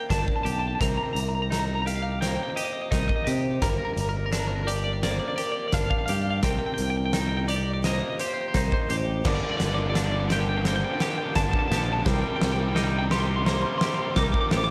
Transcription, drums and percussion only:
0.10 kick, snare, closed hi-hat
0.28 kick
0.46 closed hi-hat
0.81 kick, snare, closed hi-hat
1.16 closed hi-hat
1.52 snare, closed hi-hat
1.87 closed hi-hat
2.22 snare, closed hi-hat
2.57 closed hi-hat
2.92 kick, snare, closed hi-hat
3.09 kick
3.27 closed hi-hat
3.62 kick, snare, closed hi-hat
3.97 closed hi-hat
4.33 snare, closed hi-hat
4.68 closed hi-hat
5.03 snare, closed hi-hat
5.38 closed hi-hat
5.72 kick, snare, closed hi-hat
5.91 kick
6.08 closed hi-hat
6.43 kick, snare, closed hi-hat
6.78 closed hi-hat
7.13 snare, closed hi-hat
7.49 closed hi-hat
7.84 snare, closed hi-hat
8.19 closed hi-hat
8.54 kick, snare, closed hi-hat
8.72 kick
8.90 closed hi-hat
9.25 kick, snare, crash
9.60 snare, closed hi-hat
9.95 snare, closed hi-hat
10.30 snare, closed hi-hat
10.65 snare, closed hi-hat
11.00 snare, closed hi-hat
11.35 kick, snare, closed hi-hat
11.53 kick
11.72 snare, closed hi-hat
12.06 kick, snare
12.41 snare
12.76 snare
13.11 snare
13.46 snare
13.81 snare
14.16 kick, snare
14.34 kick
14.51 snare

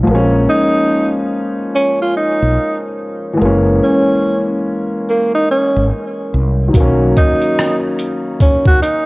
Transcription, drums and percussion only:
6.74 kick, closed hi-hat
7.17 kick, closed hi-hat
7.42 closed hi-hat
7.59 cross-stick, closed hi-hat
7.99 closed hi-hat
8.40 kick, closed hi-hat
8.65 kick
8.83 closed hi-hat

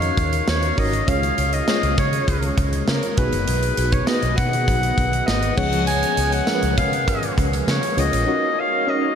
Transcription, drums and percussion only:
0.02 closed hi-hat
0.17 kick, closed hi-hat
0.33 closed hi-hat
0.47 snare, tambourine
0.63 closed hi-hat
0.78 kick, open hi-hat
0.93 closed hi-hat
1.08 kick, closed hi-hat
1.23 closed hi-hat
1.38 closed hi-hat
1.53 closed hi-hat
1.68 snare, tambourine
1.83 closed hi-hat
1.98 kick, closed hi-hat
2.13 closed hi-hat
2.28 kick, closed hi-hat
2.43 closed hi-hat
2.58 kick, closed hi-hat
2.73 closed hi-hat
2.88 snare, tambourine
3.03 closed hi-hat
3.17 kick, closed hi-hat
3.33 closed hi-hat
3.48 closed hi-hat
3.63 closed hi-hat
3.77 closed hi-hat
3.92 kick, closed hi-hat
4.07 snare, tambourine
4.22 closed hi-hat
4.38 kick, closed hi-hat
4.53 closed hi-hat
4.68 kick, closed hi-hat
4.83 closed hi-hat
4.98 kick, closed hi-hat
5.13 closed hi-hat
5.28 snare, tambourine
5.43 closed hi-hat
5.58 kick, crash
5.73 closed hi-hat
5.87 closed hi-hat
6.03 closed hi-hat
6.17 closed hi-hat
6.32 closed hi-hat
6.47 snare, tambourine
6.63 closed hi-hat
6.78 kick, closed hi-hat
6.93 closed hi-hat
7.08 kick, closed hi-hat
7.23 closed hi-hat
7.38 kick, closed hi-hat
7.53 closed hi-hat
7.68 snare, tambourine
7.83 closed hi-hat
7.98 closed hi-hat
8.13 closed hi-hat

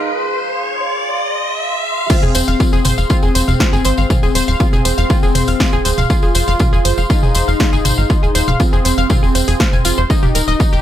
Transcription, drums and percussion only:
2.10 kick, tambourine, crash
2.23 mid tom, tambourine
2.35 open hi-hat, tambourine
2.48 tambourine
2.60 kick, tambourine
2.73 tambourine
2.85 mid tom, open hi-hat, tambourine
2.98 tambourine
3.10 kick, tambourine
3.22 tambourine
3.35 open hi-hat, tambourine
3.48 mid tom, tambourine
3.60 kick, snare, tambourine
3.73 tambourine
3.85 open hi-hat, tambourine
3.97 tambourine
4.10 kick, mid tom, tambourine
4.23 tambourine
4.35 open hi-hat, tambourine
4.48 tambourine
4.60 kick, tambourine
4.73 mid tom, tambourine
4.85 open hi-hat, tambourine
4.98 tambourine
5.10 kick, tambourine
5.23 tambourine
5.35 mid tom, open hi-hat, tambourine
5.47 open hi-hat, tambourine
5.60 kick, snare, tambourine
5.73 tambourine
5.85 open hi-hat, tambourine
5.98 mid tom, tambourine
6.10 kick, tambourine
6.22 tambourine
6.35 open hi-hat, tambourine
6.48 tambourine
6.59 kick, mid tom, tambourine
6.74 tambourine
6.85 open hi-hat, tambourine
6.98 tambourine
7.10 kick, tambourine
7.23 mid tom, tambourine
7.35 open hi-hat, tambourine
7.49 tambourine
7.60 kick, snare, tambourine
7.73 tambourine
7.85 mid tom, open hi-hat, tambourine
7.99 tambourine
8.10 kick, tambourine
8.24 tambourine
8.35 open hi-hat, tambourine
8.48 mid tom, tambourine
8.60 kick, tambourine
8.73 tambourine
8.85 open hi-hat, tambourine
8.98 tambourine
9.10 kick, mid tom, tambourine
9.24 tambourine
9.35 open hi-hat, tambourine
9.48 open hi-hat, tambourine
9.60 kick, snare, tambourine
9.73 mid tom, tambourine
9.85 open hi-hat, tambourine
9.98 tambourine
10.10 kick, tambourine
10.23 mid tom, tambourine
10.35 open hi-hat, tambourine
10.48 tambourine
10.60 kick, tambourine
10.73 tambourine

